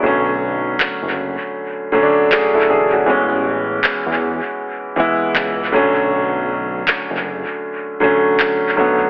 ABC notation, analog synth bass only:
X:1
M:4/4
L:1/16
Q:"Swing 16ths" 1/4=79
K:Bdor
V:1 name="Analog synth bass" clef=bass
B,,,4 F,,, F,,,2 z6 z E,,,2 | A,,,4 E,, E,,2 z4 z C,,2 B,,,2- | B,,,4 F,,, F,,,2 z6 z B,,,2 |]